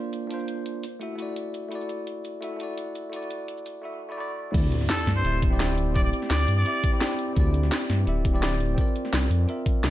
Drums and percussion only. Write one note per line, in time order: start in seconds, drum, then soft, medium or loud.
0.13 closed hi-hat medium
0.13 cabasa medium
0.31 closed hi-hat medium
0.40 cabasa soft
0.48 closed hi-hat medium
0.48 cabasa medium
0.66 closed hi-hat medium
0.83 open hi-hat medium
0.83 cabasa medium
1.01 closed hi-hat medium
1.19 closed hi-hat medium
1.19 cabasa medium
1.36 closed hi-hat medium
1.54 closed hi-hat medium
1.54 cabasa medium
1.72 closed hi-hat medium
1.81 cabasa soft
1.89 closed hi-hat medium
1.89 cabasa medium
2.07 closed hi-hat loud
2.25 closed hi-hat medium
2.25 cabasa medium
2.42 closed hi-hat loud
2.60 closed hi-hat medium
2.60 cabasa medium
2.78 closed hi-hat loud
2.95 closed hi-hat medium
2.95 cabasa medium
3.13 closed hi-hat loud
3.22 cabasa soft
3.31 closed hi-hat medium
3.31 cabasa medium
3.48 closed hi-hat loud
3.58 cabasa soft
3.66 open hi-hat medium
3.66 cabasa medium
4.54 kick loud
4.54 closed hi-hat loud
4.54 crash loud
4.64 cabasa soft
4.72 closed hi-hat medium
4.72 cabasa medium
4.81 snare soft
4.90 snare loud
4.90 closed hi-hat loud
5.07 snare medium
5.07 closed hi-hat medium
5.07 cabasa medium
5.25 closed hi-hat loud
5.42 kick loud
5.42 closed hi-hat medium
5.42 cabasa medium
5.60 snare loud
5.60 closed hi-hat loud
5.78 closed hi-hat medium
5.78 cabasa medium
5.95 kick loud
5.95 closed hi-hat medium
6.05 cabasa soft
6.13 closed hi-hat medium
6.13 cabasa medium
6.22 snare soft
6.31 snare loud
6.31 closed hi-hat medium
6.48 open hi-hat medium
6.48 cabasa medium
6.66 closed hi-hat medium
6.84 kick loud
6.84 closed hi-hat medium
6.84 cabasa medium
7.01 snare loud
7.01 closed hi-hat medium
7.19 closed hi-hat medium
7.19 cabasa medium
7.36 kick loud
7.36 closed hi-hat medium
7.46 cabasa soft
7.54 closed hi-hat medium
7.54 cabasa medium
7.63 snare soft
7.72 snare loud
7.72 closed hi-hat medium
7.90 snare medium
7.90 closed hi-hat medium
7.90 cabasa medium
8.07 closed hi-hat medium
8.25 kick loud
8.25 closed hi-hat medium
8.25 cabasa medium
8.43 snare loud
8.43 closed hi-hat medium
8.60 closed hi-hat medium
8.60 cabasa medium
8.78 kick loud
8.78 closed hi-hat medium
8.87 cabasa soft
8.96 closed hi-hat medium
8.96 cabasa medium
9.05 snare soft
9.13 snare loud
9.13 closed hi-hat medium
9.31 open hi-hat medium
9.31 cabasa medium
9.49 closed hi-hat medium
9.66 kick loud
9.66 closed hi-hat medium
9.66 cabasa medium
9.84 snare loud
9.84 closed hi-hat medium